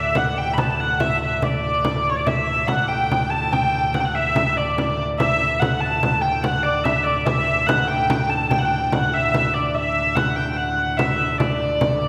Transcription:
Already playing: D2 A2 E5
0.15 F#5, frame drum
0.38 G5
0.53 B5
0.58 A5, frame drum
0.80 F#5
1.00 E5, frame drum
1.22 E5
1.42 D5, frame drum
1.63 frame drum
1.85 frame drum
2.06 D5
2.10 C#5
2.16 D5
2.27 E5, frame drum
2.48 frame drum
2.67 D2 A2 F#5, frame drum
2.88 G5, frame drum
3.11 frame drum
3.30 A5
3.52 G5, frame drum
3.94 F#5, frame drum
4.00 G5
4.05 F#5
4.15 E5, frame drum
4.36 frame drum
4.57 D5
4.78 frame drum
5.19 E5, frame drum
5.41 frame drum
5.59 F#5, frame drum
5.80 A5
6.03 frame drum
6.21 G5
6.43 F#5, frame drum
6.63 D5
6.84 E5, frame drum
7.04 D5, frame drum
7.26 E5, frame drum
7.67 D2 A2 F#5, frame drum
7.88 G5, frame drum
8.10 frame drum
8.30 A5
8.50 G5, frame drum
8.59 F#5
8.65 G5
8.92 F#5, frame drum
9.13 E5, frame drum
9.34 frame drum
9.54 D5
9.75 E5
10.15 F#5, frame drum
10.36 G5, frame drum
10.53 F#5 G5
10.77 F#5
10.97 E5, frame drum
11.39 D5, frame drum
11.61 frame drum
11.81 frame drum
12.03 frame drum

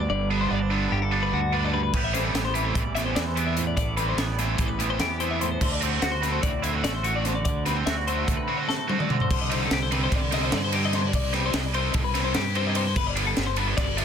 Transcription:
Already playing: D3 B3
0.09 G1 G2 D5
0.30 D3 G3 B3 D4 B4
0.41 C5
0.50 G1 B3 D5
0.59 D4 C5
0.69 D3 G3 B3 D4 B4
0.90 G1 G2 G4
1.02 A4
1.12 D3 G3 B3 D4
1.23 B4
1.32 D2 D3 F#4
1.52 D3 G3 B3 D4 B4
1.64 D5
1.74 G2 B4
1.83 B4
1.93 A1 A2 E3 G3 B3 G4 B4, kick, crash
2.04 E5
2.14 E3 G3 A3 C4 E4 C5, snare, closed hi-hat
2.24 A4
2.34 A1 B3 G4, snare, closed hi-hat
2.45 C5
2.54 E3 A3 C4 E4 B4, closed hi-hat
2.65 C5
2.75 A1 E2 D5, kick, closed hi-hat
2.95 E3 A3 B3 C4 E4 E5, snare, closed hi-hat
3.06 C5
3.16 E2 E3 D5, snare, closed hi-hat
3.26 C5
3.36 E3 A3 B3 C4 E4 G4, closed hi-hat
3.47 E5
3.57 A2 C5, closed hi-hat
3.67 D5
3.77 A1 A2 D5, kick, closed hi-hat
3.97 E3 G3 A3 C4 E4 B4, closed hi-hat
4.09 C5
4.17 A1 B3 E5, snare, closed hi-hat
4.28 D5
4.39 E3 A3 C4 E4 C5, snare, closed hi-hat
4.58 A1 E2 A4, kick, closed hi-hat
4.68 B4
4.79 E3 A3 B3 C4 E4, closed hi-hat
4.90 C5
4.99 E2 E3 G4, snare, closed hi-hat
5.20 E3 A3 B3 C4 E4 C5, closed hi-hat
5.31 E5
5.41 A2 C5, closed hi-hat
5.52 C5
5.61 D2 D3 C5, kick, crash
5.72 D5
5.81 D3 A3 C4 F#4 C5, closed hi-hat
5.92 A4
6.02 D2 F#4, snare, closed hi-hat
6.12 C5
6.21 D3 A3 C4 F#4 B4, snare, closed hi-hat
6.32 C5
6.42 D2 A2 D5, kick, closed hi-hat
6.62 D3 A3 C4 E4 F#4 E5, closed hi-hat
6.73 F#4 C5
6.83 A1 A3 D5, snare, closed hi-hat
6.95 C5
7.04 D3 A3 C4 F#4, closed hi-hat
7.16 D5
7.25 D3 C5, snare, closed hi-hat
7.35 D5
7.45 D2 D3 D5, kick, closed hi-hat
7.66 D3 A3 C4 F#4 B4, snare, closed hi-hat
7.76 C5
7.86 D2 F#4 E5, snare, closed hi-hat
7.97 D5
8.07 D3 A3 C4 F#4 C5, closed hi-hat
8.27 D2 A2 A4, kick, closed hi-hat
8.37 B4
8.48 D3 A3 C4 F#4
8.57 C5
8.69 A3 A4, snare
8.88 D3 A3 C4 F#4 C5, high tom
8.99 D5, mid tom
9.10 D3 C5, mid tom
9.20 C5, floor tom
9.30 C2 C5, kick, crash
9.41 D#5
9.50 C3 G3 C4 D#4 C5, ride
9.62 A4
9.71 C2 G4, snare, ride
9.83 C5
9.91 C3 G3 C4 D#4 B4, ride
10.04 C5
10.12 C2 D5, kick, snare, ride
10.32 C3 G3 C4 D#4 D#5, snare, ride
10.45 C5
10.52 G2 D5, snare, ride
10.64 C5
10.72 C3 G3 C4 D#4 G4, ride
10.85 D#5
10.93 C5, snare, ride
11.06 D5
11.13 C2 D5, kick, ride
11.33 C3 G3 C4 D#4 B4, snare, ride
11.46 C5
11.54 C2 D#5, snare, ride
11.66 D5
11.74 C3 G3 C4 D#4 C5, ride
11.94 C2 A4, kick, ride
12.04 B4
12.15 C3 G3 C4 D#4, snare, ride
12.25 C5
12.34 G2 G4, snare, ride
12.55 C3 G3 C4 D#4 C5, ride
12.67 D#5
12.75 C5, ride
12.87 C5
12.96 G1 B4, kick, crash
13.07 D5
13.16 D3 G3 B3 D4 B4, ride
13.27 A4
13.37 G1 G4, snare, ride
13.47 C5
13.56 D3 G3 B3 D4 B4, ride
13.67 C5
13.77 G1 D5, kick, snare, ride
13.97 D3 G3 B3 D4 E5, ride

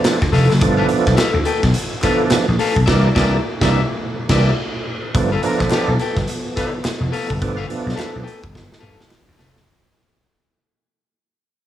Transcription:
Already playing: F3 A3 B3 D4
0.05 muted clean electric guitar stroke, snare, clap, closed hi-hat
0.22 D2, muted clean electric guitar stroke, kick, snare
0.32 F1 A4 B4 F5, snare, open hi-hat
0.49 F#1, muted clean electric guitar stroke, snare
0.60 G1 F3 A3 B3 D4, muted clean electric guitar stroke, kick, closed hi-hat
0.77 A4 B4 F5
0.88 muted clean electric guitar stroke, closed hi-hat
1.06 B1, muted clean electric guitar stroke, kick, snare
1.16 A4 B4 F5, muted slap bass stroke, snare, clap, closed hi-hat
1.34 D2, muted clean electric guitar stroke
1.45 A4 B4 G5, closed hi-hat
1.63 B1, muted clean electric guitar stroke, kick, snare
1.74 muted clean electric guitar stroke, closed hi-hat
1.91 muted clean electric guitar stroke
2.02 F3 A3 B3 D4 A4 B4 F5, kick, snare, clap, closed hi-hat
2.20 muted clean electric guitar stroke
2.30 muted clean electric guitar stroke, muted slap bass stroke, snare, clap, closed hi-hat
2.48 A#1, muted clean electric guitar stroke
2.59 A4 B4 F5, open hi-hat
2.76 B1, muted clean electric guitar stroke, kick
2.86 C2 E3 G3 A#3 D4 A#4 D5 E5, kick, snare, crash
3.15 C2 E3 G3 A#3 D4 A#4 D5 E5, kick, snare
3.61 C2 E3 G3 A#3 D4 A#4 D5 E5, kick, snare
4.29 C2 E3 G3 A#3 D4 A#4 D5 E5, kick, snare, crash
5.14 G1 F3 A3 B3 D4, muted clean electric guitar stroke, kick, closed hi-hat
5.32 A4 B4 F5
5.43 F3 A3 B3 D4 F4 A#4, muted clean electric guitar stroke, closed hi-hat
5.59 A#1 F3 D4 B4, muted clean electric guitar stroke, kick, snare
5.70 D3 B3 G4 A4 B4 F5, muted slap bass stroke, snare, clap, closed hi-hat
5.88 B1, muted clean electric guitar stroke
5.99 A4 B4 G5, closed hi-hat
6.16 G1, muted clean electric guitar stroke, kick, snare
6.28 muted clean electric guitar stroke, closed hi-hat
6.56 F3 D4 A4 B4 F5, kick, snare, closed hi-hat
6.73 muted clean electric guitar stroke
6.83 muted clean electric guitar stroke, muted slap bass stroke, snare, clap, closed hi-hat
7.00 F1, muted clean electric guitar stroke
7.12 A4 B4 F5, open hi-hat
7.30 F#1, muted clean electric guitar stroke, kick
7.39 G1 F3 A3 B3 D4, muted clean electric guitar stroke, kick, closed hi-hat
7.57 A4 B4 F5
7.67 F3 A3 B3 D4, muted clean electric guitar stroke, closed hi-hat
7.84 B1, muted clean electric guitar stroke
7.89 snare
7.96 A4 B4 F5, muted slap bass stroke, clap, closed hi-hat
8.00 snare
8.13 B1, muted clean electric guitar stroke
8.23 A4 B4 G5
8.27 closed hi-hat
8.40 G1, muted clean electric guitar stroke, kick
8.52 G1, muted clean electric guitar stroke, kick, snare
8.67 muted clean electric guitar stroke
8.72 snare
8.79 G2 A4 B4 F5
8.97 muted clean electric guitar stroke, snare
9.10 muted clean electric guitar stroke, snare, clap
9.27 D2, muted clean electric guitar stroke
9.38 F1 A4 B4 F5, snare
9.54 F#1, muted clean electric guitar stroke, snare

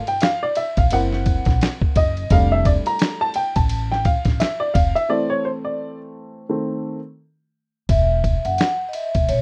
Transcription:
0.07 G5, ride
0.21 F5, snare, hi-hat pedal, ride
0.43 D5
0.55 E5, ride
0.77 A#1 F5, kick, ride
0.91 F#1 A#3 C4 E4 F#5, ride
1.13 snare
1.26 kick, ride
1.45 A#1, kick, snare, ride
1.61 snare, hi-hat pedal, ride
1.82 kick
1.96 F#1 D#5, kick, ride
2.17 ride
2.30 F1 G3 A3 D4 F5, kick, ride
2.52 E5
2.65 D5, kick, ride
2.86 A#5, ride
2.99 snare, hi-hat pedal, ride
3.21 A5
3.34 G5, ride
3.56 A1 A5, kick, ride
3.69 ride
3.92 G5, snare
4.05 F5, kick, ride
4.25 A1, kick, snare, ride
4.40 E5, snare, hi-hat pedal, ride
4.60 D5
4.74 F1 F5, kick, ride
4.95 E5, ride
5.09 E3 A3 C4 D5
5.30 C#5
5.45 C5
5.65 D5
6.49 D#3 A3 C4
7.89 E1 E5, kick, ride
8.24 kick, ride
8.45 F#1 F#5, ride
8.58 snare, hi-hat pedal, ride
8.89 D#5
8.93 E5, ride
9.15 E1, kick, ride
9.29 B1 C#5, ride

